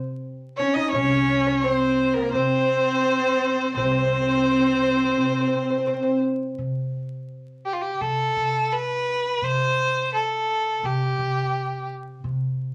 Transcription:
Already playing: upright bass C3
0.57 cello C#4, oud C#4, violin C#5
0.74 oud D#4, violin D#5
0.91 upright bass C2, cello C#4, oud C#4, violin C#5
1.47 oud C#4
1.62 oud C4, cello C4, violin C#5
1.73 violin C5
2.13 cello A#3, oud A#3, violin A#4
2.29 oud A#3, violin C5
2.33 upright bass C3, cello C4, oud C4
3.74 upright bass C2, cello C4, oud C4, violin C5
3.84 oud C4
3.92 oud C4
3.98 oud C4
4.06 oud C4
4.13 oud C4
4.21 oud C4
4.30 oud C4
4.37 oud C4
4.43 oud C4
4.52 oud C4
4.59 oud C4
4.67 oud C4
4.74 oud C4
4.83 oud C4
4.91 oud C4
4.97 oud C4
5.05 oud C4
5.11 oud C4
5.17 upright bass C3, oud C4
5.25 oud C4
5.34 oud C4
5.41 oud C4
5.47 oud C4
5.55 oud C4
5.64 oud C4
5.70 oud C4
5.78 oud C4
5.87 oud C4
5.94 oud C4
6.03 oud C4
6.58 upright bass C3
7.65 violin G4
7.73 violin F4
7.81 violin G4
8.01 upright bass C3, violin A4
8.37 upright bass C3
8.72 violin B4
9.42 upright bass C3, violin C5
10.14 violin A4
10.83 upright bass C3, violin G4
11.18 upright bass C3
12.24 upright bass C3

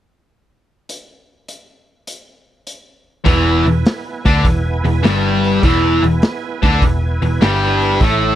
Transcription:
0.89 closed hi-hat
1.48 closed hi-hat
2.07 closed hi-hat
2.67 closed hi-hat
3.24 picked electric bass E1, distorted electric guitar E2 E3, tonewheel organ B3 E4 B4 G#5, kick, open hi-hat
3.66 picked electric bass E1, distorted electric guitar E2, open hi-hat
3.86 snare, open hi-hat
4.25 picked electric bass D2, distorted electric guitar D3 D4, kick, open hi-hat
4.45 picked electric bass E1, distorted electric guitar E2, kick, open hi-hat
4.84 picked electric bass E1, distorted electric guitar E2, open hi-hat
5.03 picked electric bass G1, distorted electric guitar G2 G3, snare, open hi-hat
5.44 open hi-hat
5.62 picked electric bass E1, distorted electric guitar E2 E3, tonewheel organ B3 E4 B4 G#5, kick, open hi-hat
6.03 picked electric bass E1, distorted electric guitar E2, open hi-hat
6.22 snare, open hi-hat
6.62 picked electric bass D2, distorted electric guitar D3 D4, kick, open hi-hat
6.82 picked electric bass E1, distorted electric guitar E2, kick, open hi-hat
7.22 picked electric bass E1, distorted electric guitar E2, open hi-hat
7.41 picked electric bass G1, distorted electric guitar G2 G3, snare, open hi-hat
7.82 open hi-hat
8.00 picked electric bass A1, distorted electric guitar A2 A3, tonewheel organ A3 E4 A4 E5, kick, open hi-hat

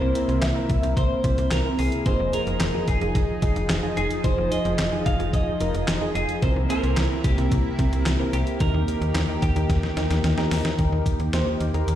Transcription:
Already playing: analog synth pad C3 A#3 E4, clean electric guitar C5
0.01 fm bass C2
0.15 synth keys C4 E4 A#4, closed hi-hat
0.29 fm bass C2, closed hi-hat
0.42 fm bass C2, clean electric guitar E5, snare, clap, closed hi-hat
0.56 synth keys C4 E4 A#4
0.69 fm bass C2, kick, closed hi-hat
0.83 fm bass C2, synth keys C4 E4 A#4, closed hi-hat
0.97 fm bass C2, clean electric guitar C5, kick, closed hi-hat
1.24 fm bass C2, synth keys C4 E4 C5, kick, closed hi-hat
1.38 fm bass C2, closed hi-hat
1.51 fm bass C2, clean electric guitar A#4, snare, clap, closed hi-hat
1.65 synth keys C4 E4 A#4
1.79 fm bass C2, clean electric guitar G#4, open hi-hat
1.92 closed hi-hat
2.06 fm bass F1, analog synth pad F3 D#4 G#4, synth keys D#4 F4 G#4, clean electric guitar C5, kick, closed hi-hat
2.20 fm bass F1
2.33 synth keys D#4 F4 G#4, clean electric guitar A#4, closed hi-hat
2.47 fm bass F1, closed hi-hat
2.60 fm bass F1, snare, clap, closed hi-hat
2.74 synth keys D#4 F4 G#4
2.88 fm bass F1, clean electric guitar G#4, kick, closed hi-hat
3.01 fm bass F1, synth keys D#4 F4 G#4, closed hi-hat
3.15 fm bass F1, kick, closed hi-hat
3.42 fm bass F1, synth keys D#4 F4 G#4, kick, closed hi-hat
3.56 fm bass F1, closed hi-hat
3.69 fm bass F1, snare, clap, closed hi-hat
3.83 synth keys D#4 F4 G#4
3.97 fm bass F1, clean electric guitar G#4, closed hi-hat
4.11 closed hi-hat
4.24 fm bass F1, synth keys D#4 F4 G#4, clean electric guitar C5, kick, closed hi-hat
4.38 fm bass F1
4.51 synth keys D#4 F4 G#4, clean electric guitar D#5, closed hi-hat
4.65 fm bass F1, closed hi-hat
4.79 fm bass F1, snare, clap, closed hi-hat
4.92 synth keys D#4 F4 G#4
5.06 fm bass F1, clean electric guitar F5, kick, closed hi-hat
5.19 fm bass F1, synth keys D#4 F4 G#4, closed hi-hat
5.33 fm bass F1, clean electric guitar D#5, kick, closed hi-hat
5.60 fm bass F1, synth keys D#4 F4 A#4, closed hi-hat
5.74 fm bass F1, closed hi-hat
5.88 fm bass F1, snare, clap, closed hi-hat
6.01 synth keys D#4 F4 G#4
6.15 fm bass F1, clean electric guitar G#4, closed hi-hat
6.29 closed hi-hat
6.42 fm bass C2, analog synth pad C3 A#3 E4, synth keys C4 E4 A#4, clean electric guitar C5, kick, closed hi-hat
6.56 fm bass C2
6.70 synth keys C4 E4 C5, clean electric guitar A#4, closed hi-hat
6.83 fm bass C2, closed hi-hat
6.97 fm bass C2, snare, clap, closed hi-hat
7.10 synth keys C4 E4 A#4
7.24 fm bass C2, clean electric guitar G4, kick, closed hi-hat
7.38 fm bass C2, synth keys C4 E4 A#4, closed hi-hat
7.52 fm bass C2, kick, closed hi-hat
7.79 fm bass C2, synth keys C4 E4 A#4, kick, closed hi-hat
7.92 fm bass C2, closed hi-hat
8.06 fm bass C2, snare, clap, closed hi-hat
8.20 synth keys C4 E4 A#4
8.33 fm bass C2, clean electric guitar G4, closed hi-hat
8.47 closed hi-hat
8.60 fm bass D#2, analog synth pad D#3 G4, synth keys D#4 G4 A#4, clean electric guitar A#4, kick, closed hi-hat
8.74 fm bass D#2
8.88 synth keys D#4 G4 A#4, closed hi-hat
9.01 fm bass D#2, closed hi-hat
9.15 fm bass D#2, snare, clap, closed hi-hat
9.29 synth keys D#4 G4 A#4
9.42 fm bass D#2, clean electric guitar G4, kick, closed hi-hat
9.56 fm bass D#2, synth keys D#4 G4 A#4, closed hi-hat
9.70 fm bass D#2, kick, snare, closed hi-hat
9.83 snare
9.97 fm bass D#2, synth keys D#4 G4 A#4, snare, closed hi-hat
10.11 fm bass D#2, snare, closed hi-hat
10.24 fm bass D#2, snare, closed hi-hat
10.38 synth keys D#4 G4 A#4, snare
10.51 fm bass D#2, snare, open hi-hat
10.65 snare, closed hi-hat
10.79 fm bass D#2, analog synth pad D#3 A#3 G4, synth keys D#4 G4 A#4, kick, closed hi-hat
10.92 fm bass D#2
11.06 kick, closed hi-hat
11.20 fm bass D#2, closed hi-hat
11.33 fm bass D#2, synth keys D#4 G4 C5, snare, closed hi-hat
11.60 fm bass D#2, closed hi-hat
11.74 fm bass D#2, synth keys D#4 G4 A#4, closed hi-hat
11.88 fm bass D#2, closed hi-hat

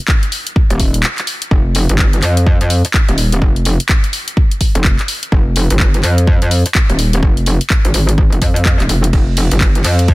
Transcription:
0.08 kick, clap
0.23 closed hi-hat
0.32 open hi-hat
0.47 closed hi-hat
0.56 kick
0.70 wobble bass D#1, closed hi-hat
0.80 kick, open hi-hat
0.94 closed hi-hat
1.03 clap
1.18 clap, closed hi-hat
1.27 open hi-hat
1.42 closed hi-hat
1.51 wobble bass F1, kick
1.75 open hi-hat
1.89 wobble bass G1, closed hi-hat
1.99 kick, clap
2.13 closed hi-hat
2.23 wobble bass F2, clap, open hi-hat
2.37 closed hi-hat
2.46 kick
2.61 wobble bass F2, closed hi-hat
2.70 open hi-hat
2.85 closed hi-hat
2.94 kick, clap
3.09 wobble bass D#1, closed hi-hat
3.18 open hi-hat
3.32 closed hi-hat
3.42 wobble bass F1, kick
3.56 closed hi-hat
3.65 open hi-hat
3.80 closed hi-hat
3.89 kick, clap
4.04 closed hi-hat
4.13 open hi-hat
4.28 closed hi-hat
4.37 kick
4.51 closed hi-hat
4.61 kick, open hi-hat
4.75 wobble bass F1, closed hi-hat
4.84 kick, clap
4.99 clap, closed hi-hat
5.08 open hi-hat
5.23 closed hi-hat
5.32 wobble bass F1, kick
5.56 open hi-hat
5.70 wobble bass G1, closed hi-hat
5.80 kick, clap
5.94 closed hi-hat
6.03 wobble bass F2, clap, open hi-hat
6.18 closed hi-hat
6.27 kick
6.42 wobble bass F2, closed hi-hat
6.51 open hi-hat
6.66 closed hi-hat
6.75 kick, clap
6.90 wobble bass D#1, closed hi-hat
6.99 open hi-hat
7.13 closed hi-hat
7.23 wobble bass F1, kick
7.37 closed hi-hat
7.46 open hi-hat
7.61 closed hi-hat
7.70 kick, clap
7.85 wobble bass G#1, closed hi-hat
7.94 wobble bass G#1, open hi-hat
8.09 closed hi-hat
8.18 kick
8.32 wobble bass F1, closed hi-hat
8.42 wobble bass F2, kick, open hi-hat
8.56 closed hi-hat
8.65 kick, clap
8.80 wobble bass D#1, clap, closed hi-hat
8.89 wobble bass F1, open hi-hat
9.04 closed hi-hat
9.13 wobble bass F1, kick, ride
9.37 open hi-hat, ride
9.51 wobble bass G1, closed hi-hat
9.61 kick, clap, ride
9.75 closed hi-hat
9.84 wobble bass F2, clap, open hi-hat, ride
9.99 closed hi-hat
10.08 kick, ride

